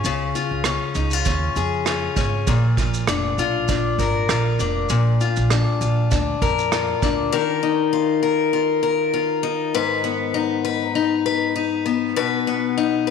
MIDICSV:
0, 0, Header, 1, 4, 480
1, 0, Start_track
1, 0, Tempo, 606061
1, 40, Time_signature, 4, 2, 24, 8
1, 10378, End_track
2, 0, Start_track
2, 0, Title_t, "Steel-string acoustic guitar"
2, 0, Program_c, 0, 25
2, 0, Note_on_c, 0, 61, 54
2, 0, Note_on_c, 0, 65, 57
2, 0, Note_on_c, 0, 68, 61
2, 44, Note_on_c, 0, 49, 76
2, 275, Note_off_c, 0, 65, 0
2, 278, Note_on_c, 0, 65, 55
2, 510, Note_off_c, 0, 61, 0
2, 520, Note_on_c, 0, 61, 57
2, 757, Note_off_c, 0, 65, 0
2, 760, Note_on_c, 0, 63, 52
2, 895, Note_off_c, 0, 63, 0
2, 895, Note_on_c, 0, 65, 40
2, 988, Note_off_c, 0, 61, 0
2, 997, Note_on_c, 0, 61, 56
2, 1232, Note_off_c, 0, 68, 0
2, 1242, Note_on_c, 0, 68, 57
2, 1473, Note_off_c, 0, 65, 0
2, 1482, Note_on_c, 0, 65, 55
2, 1707, Note_off_c, 0, 61, 0
2, 1716, Note_on_c, 0, 61, 58
2, 1960, Note_on_c, 0, 46, 74
2, 1964, Note_off_c, 0, 49, 0
2, 2012, Note_off_c, 0, 61, 0
2, 2015, Note_off_c, 0, 68, 0
2, 2199, Note_off_c, 0, 65, 0
2, 2202, Note_on_c, 0, 65, 57
2, 2442, Note_on_c, 0, 62, 56
2, 2681, Note_off_c, 0, 65, 0
2, 2684, Note_on_c, 0, 65, 58
2, 2912, Note_off_c, 0, 62, 0
2, 2921, Note_on_c, 0, 62, 57
2, 3163, Note_on_c, 0, 70, 59
2, 3398, Note_off_c, 0, 65, 0
2, 3401, Note_on_c, 0, 65, 59
2, 3637, Note_off_c, 0, 62, 0
2, 3646, Note_on_c, 0, 62, 60
2, 3871, Note_off_c, 0, 46, 0
2, 3880, Note_on_c, 0, 46, 74
2, 4122, Note_off_c, 0, 65, 0
2, 4125, Note_on_c, 0, 65, 52
2, 4350, Note_off_c, 0, 62, 0
2, 4360, Note_on_c, 0, 62, 58
2, 4598, Note_off_c, 0, 65, 0
2, 4601, Note_on_c, 0, 65, 55
2, 4832, Note_off_c, 0, 62, 0
2, 4842, Note_on_c, 0, 62, 59
2, 5081, Note_off_c, 0, 70, 0
2, 5084, Note_on_c, 0, 70, 61
2, 5323, Note_off_c, 0, 65, 0
2, 5326, Note_on_c, 0, 65, 60
2, 5557, Note_off_c, 0, 62, 0
2, 5567, Note_on_c, 0, 62, 55
2, 5801, Note_off_c, 0, 46, 0
2, 5801, Note_on_c, 0, 51, 78
2, 5804, Note_off_c, 0, 70, 0
2, 5807, Note_on_c, 0, 70, 69
2, 5857, Note_off_c, 0, 62, 0
2, 6041, Note_on_c, 0, 63, 56
2, 6064, Note_off_c, 0, 65, 0
2, 6278, Note_on_c, 0, 65, 65
2, 6506, Note_off_c, 0, 70, 0
2, 6515, Note_on_c, 0, 70, 70
2, 6746, Note_off_c, 0, 65, 0
2, 6756, Note_on_c, 0, 65, 60
2, 6982, Note_off_c, 0, 70, 0
2, 6991, Note_on_c, 0, 70, 67
2, 7226, Note_off_c, 0, 65, 0
2, 7235, Note_on_c, 0, 65, 59
2, 7466, Note_off_c, 0, 63, 0
2, 7469, Note_on_c, 0, 63, 67
2, 7715, Note_off_c, 0, 70, 0
2, 7718, Note_on_c, 0, 44, 79
2, 7721, Note_on_c, 0, 71, 69
2, 7770, Note_off_c, 0, 65, 0
2, 7947, Note_off_c, 0, 63, 0
2, 7950, Note_on_c, 0, 59, 57
2, 8190, Note_on_c, 0, 63, 64
2, 8428, Note_off_c, 0, 71, 0
2, 8431, Note_on_c, 0, 71, 70
2, 8573, Note_off_c, 0, 51, 0
2, 8671, Note_off_c, 0, 63, 0
2, 8674, Note_on_c, 0, 63, 59
2, 8912, Note_off_c, 0, 71, 0
2, 8916, Note_on_c, 0, 71, 67
2, 9149, Note_off_c, 0, 63, 0
2, 9152, Note_on_c, 0, 63, 66
2, 9387, Note_off_c, 0, 59, 0
2, 9390, Note_on_c, 0, 59, 62
2, 9631, Note_off_c, 0, 44, 0
2, 9634, Note_on_c, 0, 47, 86
2, 9636, Note_off_c, 0, 71, 0
2, 9639, Note_on_c, 0, 71, 67
2, 9875, Note_off_c, 0, 59, 0
2, 9878, Note_on_c, 0, 59, 61
2, 10114, Note_off_c, 0, 63, 0
2, 10118, Note_on_c, 0, 63, 67
2, 10343, Note_off_c, 0, 71, 0
2, 10353, Note_on_c, 0, 71, 69
2, 10378, Note_off_c, 0, 47, 0
2, 10378, Note_off_c, 0, 59, 0
2, 10378, Note_off_c, 0, 63, 0
2, 10378, Note_off_c, 0, 71, 0
2, 10378, End_track
3, 0, Start_track
3, 0, Title_t, "Upright bass"
3, 0, Program_c, 1, 32
3, 35, Note_on_c, 1, 37, 86
3, 234, Note_off_c, 1, 37, 0
3, 405, Note_on_c, 1, 37, 73
3, 605, Note_off_c, 1, 37, 0
3, 754, Note_on_c, 1, 37, 96
3, 953, Note_off_c, 1, 37, 0
3, 998, Note_on_c, 1, 39, 88
3, 1196, Note_off_c, 1, 39, 0
3, 1236, Note_on_c, 1, 41, 90
3, 1632, Note_off_c, 1, 41, 0
3, 1715, Note_on_c, 1, 32, 68
3, 1914, Note_off_c, 1, 32, 0
3, 1959, Note_on_c, 1, 34, 90
3, 2157, Note_off_c, 1, 34, 0
3, 2195, Note_on_c, 1, 34, 81
3, 2395, Note_off_c, 1, 34, 0
3, 2442, Note_on_c, 1, 29, 70
3, 2639, Note_off_c, 1, 29, 0
3, 2676, Note_on_c, 1, 35, 77
3, 2875, Note_off_c, 1, 35, 0
3, 2920, Note_on_c, 1, 34, 86
3, 3157, Note_off_c, 1, 34, 0
3, 3157, Note_on_c, 1, 32, 78
3, 3356, Note_off_c, 1, 32, 0
3, 3398, Note_on_c, 1, 34, 84
3, 3597, Note_off_c, 1, 34, 0
3, 3635, Note_on_c, 1, 29, 76
3, 3835, Note_off_c, 1, 29, 0
3, 3879, Note_on_c, 1, 34, 91
3, 4078, Note_off_c, 1, 34, 0
3, 4255, Note_on_c, 1, 34, 87
3, 4452, Note_off_c, 1, 34, 0
3, 4601, Note_on_c, 1, 34, 80
3, 4799, Note_off_c, 1, 34, 0
3, 4844, Note_on_c, 1, 38, 90
3, 5040, Note_off_c, 1, 38, 0
3, 5083, Note_on_c, 1, 41, 85
3, 5476, Note_off_c, 1, 41, 0
3, 5564, Note_on_c, 1, 38, 75
3, 5760, Note_off_c, 1, 38, 0
3, 10378, End_track
4, 0, Start_track
4, 0, Title_t, "Drums"
4, 34, Note_on_c, 9, 82, 70
4, 114, Note_off_c, 9, 82, 0
4, 281, Note_on_c, 9, 82, 45
4, 360, Note_off_c, 9, 82, 0
4, 507, Note_on_c, 9, 37, 98
4, 511, Note_on_c, 9, 82, 65
4, 586, Note_off_c, 9, 37, 0
4, 591, Note_off_c, 9, 82, 0
4, 750, Note_on_c, 9, 82, 48
4, 830, Note_off_c, 9, 82, 0
4, 877, Note_on_c, 9, 82, 46
4, 956, Note_off_c, 9, 82, 0
4, 990, Note_on_c, 9, 82, 71
4, 997, Note_on_c, 9, 36, 80
4, 1069, Note_off_c, 9, 82, 0
4, 1076, Note_off_c, 9, 36, 0
4, 1234, Note_on_c, 9, 82, 45
4, 1314, Note_off_c, 9, 82, 0
4, 1472, Note_on_c, 9, 37, 94
4, 1473, Note_on_c, 9, 82, 52
4, 1552, Note_off_c, 9, 37, 0
4, 1552, Note_off_c, 9, 82, 0
4, 1715, Note_on_c, 9, 36, 85
4, 1715, Note_on_c, 9, 82, 49
4, 1794, Note_off_c, 9, 36, 0
4, 1794, Note_off_c, 9, 82, 0
4, 1957, Note_on_c, 9, 82, 70
4, 1958, Note_on_c, 9, 36, 103
4, 2036, Note_off_c, 9, 82, 0
4, 2037, Note_off_c, 9, 36, 0
4, 2196, Note_on_c, 9, 36, 92
4, 2202, Note_on_c, 9, 82, 48
4, 2276, Note_off_c, 9, 36, 0
4, 2281, Note_off_c, 9, 82, 0
4, 2327, Note_on_c, 9, 82, 52
4, 2406, Note_off_c, 9, 82, 0
4, 2435, Note_on_c, 9, 37, 109
4, 2440, Note_on_c, 9, 82, 61
4, 2514, Note_off_c, 9, 37, 0
4, 2519, Note_off_c, 9, 82, 0
4, 2681, Note_on_c, 9, 82, 45
4, 2760, Note_off_c, 9, 82, 0
4, 2917, Note_on_c, 9, 82, 77
4, 2921, Note_on_c, 9, 36, 87
4, 2996, Note_off_c, 9, 82, 0
4, 3000, Note_off_c, 9, 36, 0
4, 3158, Note_on_c, 9, 36, 73
4, 3160, Note_on_c, 9, 82, 45
4, 3238, Note_off_c, 9, 36, 0
4, 3239, Note_off_c, 9, 82, 0
4, 3398, Note_on_c, 9, 37, 103
4, 3399, Note_on_c, 9, 82, 54
4, 3478, Note_off_c, 9, 37, 0
4, 3478, Note_off_c, 9, 82, 0
4, 3639, Note_on_c, 9, 82, 54
4, 3718, Note_off_c, 9, 82, 0
4, 3875, Note_on_c, 9, 82, 75
4, 3954, Note_off_c, 9, 82, 0
4, 4124, Note_on_c, 9, 82, 48
4, 4203, Note_off_c, 9, 82, 0
4, 4248, Note_on_c, 9, 82, 51
4, 4327, Note_off_c, 9, 82, 0
4, 4359, Note_on_c, 9, 37, 97
4, 4364, Note_on_c, 9, 82, 62
4, 4439, Note_off_c, 9, 37, 0
4, 4444, Note_off_c, 9, 82, 0
4, 4604, Note_on_c, 9, 82, 47
4, 4684, Note_off_c, 9, 82, 0
4, 4841, Note_on_c, 9, 82, 74
4, 4846, Note_on_c, 9, 36, 88
4, 4920, Note_off_c, 9, 82, 0
4, 4925, Note_off_c, 9, 36, 0
4, 5083, Note_on_c, 9, 36, 84
4, 5085, Note_on_c, 9, 82, 44
4, 5162, Note_off_c, 9, 36, 0
4, 5164, Note_off_c, 9, 82, 0
4, 5216, Note_on_c, 9, 82, 48
4, 5295, Note_off_c, 9, 82, 0
4, 5322, Note_on_c, 9, 37, 103
4, 5323, Note_on_c, 9, 82, 56
4, 5401, Note_off_c, 9, 37, 0
4, 5402, Note_off_c, 9, 82, 0
4, 5563, Note_on_c, 9, 36, 87
4, 5563, Note_on_c, 9, 82, 49
4, 5643, Note_off_c, 9, 36, 0
4, 5643, Note_off_c, 9, 82, 0
4, 10378, End_track
0, 0, End_of_file